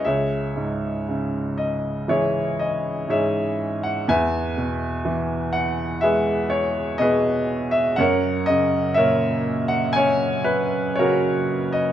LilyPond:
<<
  \new Staff \with { instrumentName = "Upright piano" } { \time 4/4 \key cis \dorian \tempo 4 = 60 << { e''4 r8 dis''8 cis''8 dis''8 e''8. fis''16 | gis''4 r8 fis''8 e''8 cis''8 dis''8. e''16 | fis''8 dis''8 e''8. fis''16 gis''8 b'8 cis''8. dis''16 | } \\ { <gis' cis''>2 <e' gis'>4 <gis' cis''>4 | <b' e''>2 <gis' b'>4 <gis' b'>4 | <ais' cis''>4 <ais' cis''>4 cis''4 <fis' ais'>4 | } >> }
  \new Staff \with { instrumentName = "Upright piano" } { \clef bass \time 4/4 \key cis \dorian cis,8 gis,8 cis4 e4 gis,4 | e,8 b,8 e4 gis4 b,4 | fis,8 cis8 ais,4 cis'4 cis4 | }
>>